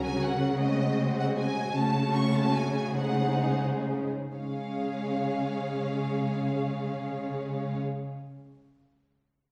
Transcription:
0.00 1.72 C#3 soft
0.00 0.57 F#3 soft
0.00 0.57 C#4 soft
0.00 1.72 F#4 soft
0.00 0.57 A#4 soft
0.00 0.22 G#5 medium
0.23 0.61 F#5 medium
0.61 1.73 G#3 soft
0.61 1.73 C4 soft
0.61 1.18 D#5 medium
0.61 1.73 D#5 soft
1.19 1.26 F#5 medium
1.38 1.76 G#5 medium
1.76 4.08 C#3 soft
1.76 2.92 A3 soft
1.76 2.92 C#4 soft
1.76 2.92 F#4 soft
1.76 2.93 C#5 soft
1.76 2.15 A5 medium
2.16 2.35 C#6 medium
2.35 2.55 A5 medium
2.55 2.96 G#5 medium
2.96 4.08 G#3 soft
2.96 4.08 D#4 soft
2.96 4.07 G#4 soft
2.96 4.07 C5 soft
2.96 3.62 F#5 medium
4.35 7.79 C#3 soft
4.35 7.78 G#3 soft
4.35 7.79 C#4 soft
4.35 7.79 G#4 soft
4.35 7.79 C#5 soft
4.35 7.78 F5 soft

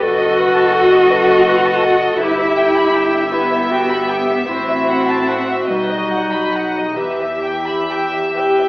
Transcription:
0.01 2.18 F#1 medium
0.01 2.22 F#4 medium
0.01 2.18 A4 soft
0.01 0.41 A4 medium
0.01 0.19 B4 medium
0.01 2.18 D#5 medium
0.20 0.38 D#5 soft
0.38 0.76 B4 medium
0.38 0.57 F#5 soft
0.57 0.75 A5 soft
0.73 1.12 A4 medium
0.73 0.92 F#5 medium
0.93 1.11 D#5 medium
1.12 1.50 A4 medium
1.12 1.30 B4 medium
1.29 1.48 D#5 medium
1.47 1.87 B4 medium
1.47 1.66 F#5 soft
1.66 1.85 A5 soft
1.83 2.25 A4 medium
1.83 2.02 F#5 medium
2.02 2.21 D#5 soft
2.21 4.45 G1 medium
2.21 3.33 E4 medium
2.21 4.49 G4 medium
2.21 3.35 G4 medium
2.21 2.39 B4 medium
2.21 5.66 E5 medium
2.40 2.59 E5 medium
2.58 2.77 G5 medium
2.77 2.96 B5 soft
2.96 3.15 G5 medium
3.15 3.34 E5 soft
3.32 4.47 B3 medium
3.32 3.72 E4 medium
3.32 3.52 B4 medium
3.52 3.71 E5 medium
3.71 4.12 F#4 medium
3.71 3.91 G5 soft
3.90 4.10 B5 soft
4.10 4.48 G4 medium
4.10 4.30 G5 soft
4.30 4.49 E5 medium
4.49 5.70 A1 medium
4.49 5.70 C4 medium
4.49 5.39 E4 medium
4.49 6.97 F#4 medium
4.49 4.68 C5 medium
4.70 4.89 E5 medium
4.91 5.10 F#5 soft
5.11 5.30 A5 soft
5.31 5.50 F#5 soft
5.51 5.71 E5 soft
5.69 6.95 B1 soft
5.69 6.53 G3 medium
5.69 6.99 D#4 medium
5.69 5.90 B4 soft
5.69 6.95 D#5 soft
5.93 6.13 D#5 soft
6.14 6.34 F#5 soft
6.34 6.54 B5 soft
6.52 6.97 F#3 medium
6.52 6.77 F#5 soft
6.78 6.99 D#5 soft
6.97 8.69 E2 medium
6.97 8.35 E3 soft
6.97 8.69 G4 medium
6.97 8.69 G4 soft
6.97 7.20 B4 soft
6.97 8.69 E5 soft
7.22 7.45 E5 soft
7.45 7.68 G5 soft
7.67 7.91 B5 soft
7.92 8.15 G5 soft
8.16 8.38 E5 soft
8.37 8.69 G4 medium
8.37 8.60 B4 soft
8.37 8.69 G5 medium
8.61 8.69 E5 soft

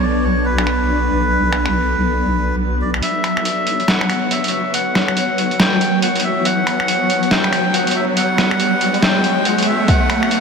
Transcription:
0.00 3.01 B1 medium
0.00 2.99 F#3 medium
0.00 2.99 B3 medium
0.00 3.04 B3 medium
0.00 2.99 D4 medium
0.00 3.05 A4 medium
0.00 0.25 D5 medium
0.24 0.46 C#5 medium
0.45 2.56 B4 medium
0.58 finger snap medium
0.67 finger snap soft
1.52 finger snap medium
1.66 finger snap medium
2.81 2.91 D5 medium
2.94 finger snap medium
3.02 4.30 B1 medium
3.02 10.40 F#3 medium
3.02 10.40 B3 medium
3.02 9.87 C#5 medium
3.02 3.91 E5 loud
3.02 closed hi-hat medium
3.02 riser medium
3.24 finger snap medium
3.24 closed hi-hat medium
3.37 finger snap medium
3.45 closed hi-hat medium
3.67 closed hi-hat medium
3.80 closed hi-hat soft
3.88 4.32 F#5 loud
3.88 snare loud
3.88 closed hi-hat medium
4.01 finger snap medium
4.10 finger snap soft
4.10 closed hi-hat soft
4.31 4.54 B1 medium
4.31 4.51 E5 medium
4.31 closed hi-hat medium
4.44 closed hi-hat soft
4.48 closed hi-hat medium
4.53 4.73 D2 medium
4.53 4.73 E5 medium
4.74 5.61 B1 medium
4.74 5.62 F#5 loud
4.74 closed hi-hat medium
4.95 finger snap medium
4.95 snare medium
4.95 closed hi-hat medium
5.08 finger snap medium
5.17 closed hi-hat medium
5.38 closed hi-hat medium
5.51 closed hi-hat soft
5.60 6.39 D2 medium
5.60 6.00 G5 loud
5.60 snare loud
5.60 closed hi-hat medium
5.81 closed hi-hat soft
6.02 6.25 F#5 loud
6.02 closed hi-hat medium
6.16 closed hi-hat soft
6.20 closed hi-hat medium
6.24 6.46 E5 medium
6.37 6.45 B1 loud
6.45 7.73 B1 loud
6.45 7.34 F#5 loud
6.45 closed hi-hat medium
6.67 finger snap medium
6.67 closed hi-hat soft
6.80 finger snap medium
6.88 closed hi-hat medium
7.10 closed hi-hat soft
7.23 closed hi-hat soft
7.31 7.75 G5 loud
7.31 snare loud
7.31 closed hi-hat medium
7.44 finger snap medium
7.53 finger snap soft
7.53 closed hi-hat soft
7.74 7.97 B1 medium
7.74 7.94 F#5 loud
7.74 closed hi-hat medium
7.87 closed hi-hat soft
7.91 closed hi-hat medium
7.95 8.16 D2 medium
7.95 8.05 E5 medium
8.17 9.04 B1 medium
8.17 9.05 F#5 loud
8.17 closed hi-hat medium
8.38 finger snap medium
8.38 snare medium
8.38 closed hi-hat soft
8.51 finger snap medium
8.60 closed hi-hat medium
8.81 closed hi-hat soft
8.94 closed hi-hat soft
9.02 9.78 D2 medium
9.02 9.47 G5 loud
9.02 snare loud
9.02 closed hi-hat medium
9.24 closed hi-hat soft
9.45 9.68 F#5 loud
9.45 closed hi-hat medium
9.58 closed hi-hat soft
9.63 closed hi-hat medium
9.67 9.89 E5 medium
9.80 9.88 F#1 medium
9.88 10.40 B1 loud
9.88 10.40 E5 medium
9.88 10.40 F#5 loud
9.88 kick loud
9.88 closed hi-hat medium
10.10 finger snap medium
10.10 closed hi-hat soft
10.23 finger snap medium
10.31 closed hi-hat medium

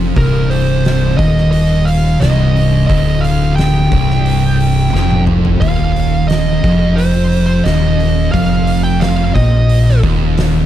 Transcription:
0.00 0.13 F1 medium
0.00 0.15 F2 loud
0.16 1.15 C1 medium
0.16 1.18 C2 loud
0.16 0.52 A#4 medium
0.16 kick loud
0.16 open hi-hat medium
0.50 1.17 C5 medium
0.50 open hi-hat medium
0.85 snare loud
0.85 open hi-hat medium
1.17 2.17 D#1 medium
1.17 2.20 D#2 loud
1.17 1.50 D#5 medium
1.17 kick loud
1.17 open hi-hat medium
1.37 snare soft
1.51 1.87 D#5 loud
1.51 open hi-hat medium
1.85 2.21 F5 medium
1.85 open hi-hat medium
2.20 2.85 C1 medium
2.20 2.88 C2 loud
2.20 2.86 D#5 medium
2.20 snare loud
2.20 open hi-hat medium
2.56 open hi-hat medium
2.87 3.88 D1 medium
2.87 3.90 D2 loud
2.87 3.23 D#5 loud
2.87 kick loud
2.87 open hi-hat medium
3.21 3.56 F5 loud
3.21 open hi-hat medium
3.56 5.23 G5 medium
3.56 snare loud
3.56 open hi-hat medium
3.91 4.90 C1 medium
3.91 4.93 C2 loud
3.91 kick loud
3.91 open hi-hat medium
4.10 snare soft
4.26 open hi-hat medium
4.60 open hi-hat medium
4.93 5.58 F1 medium
4.93 5.60 F2 loud
4.93 snare medium
5.11 high tom medium
5.27 mid tom medium
5.45 floor tom medium
5.61 6.60 D#1 medium
5.61 6.63 D#2 loud
5.61 6.28 F5 medium
5.61 kick loud
5.61 open hi-hat medium
5.96 open hi-hat medium
6.28 6.99 D#5 medium
6.28 snare loud
6.28 open hi-hat medium
6.63 7.62 F1 medium
6.63 7.65 F2 loud
6.63 kick loud
6.63 open hi-hat medium
6.96 7.45 C5 medium
6.96 open hi-hat medium
7.32 open hi-hat medium
7.47 7.65 C5 medium
7.64 8.29 D#1 medium
7.64 8.33 D#2 loud
7.64 8.31 D#5 medium
7.64 snare loud
7.64 open hi-hat medium
8.00 open hi-hat soft
8.32 9.31 F1 medium
8.32 9.35 F2 loud
8.32 8.80 F5 medium
8.32 kick loud
8.32 open hi-hat medium
8.67 open hi-hat medium
8.84 9.02 G5 loud
9.00 9.34 F5 loud
9.00 snare loud
9.00 open hi-hat medium
9.35 9.99 A#1 medium
9.35 10.03 A#2 loud
9.35 9.99 D#5 medium
9.35 kick loud
9.35 open hi-hat medium
9.69 open hi-hat medium
9.88 snare soft
10.03 10.66 D#1 medium
10.03 10.66 D#2 loud
10.03 kick loud
10.03 open hi-hat medium
10.38 snare loud
10.38 open hi-hat medium

